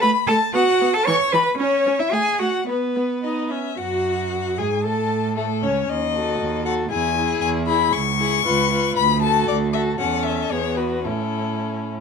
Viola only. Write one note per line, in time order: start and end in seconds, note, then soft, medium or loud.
0.02 0.10 A3 medium
0.29 0.37 A3 medium
0.54 0.62 B3 medium
0.81 0.89 B3 medium
1.07 1.15 E3 medium
1.33 1.41 E3 medium
1.59 1.67 C#4 medium
1.87 1.95 C#4 medium
2.12 2.20 A3 medium
2.40 2.48 A3 medium
2.69 2.77 B3 medium
2.96 3.04 B3 medium
3.24 3.53 D#4 medium
3.51 3.78 C#4 medium
3.79 4.60 F#4 medium
4.58 4.85 G#4 medium
4.84 5.36 A4 medium
5.37 5.45 A3 medium
5.62 5.88 C#4 medium
6.14 6.65 F#4 medium
6.66 6.91 F#4 medium
6.91 7.16 E4 medium
7.17 7.67 E4 medium
7.69 7.94 E4 medium
8.19 8.44 E4 medium
8.45 8.70 F4 medium
8.70 8.96 F4 medium
9.22 9.73 F#4 medium
9.74 9.99 F#4 medium
10.00 10.54 C#4 medium
10.52 11.06 B3 medium
11.06 11.95 C#4 soft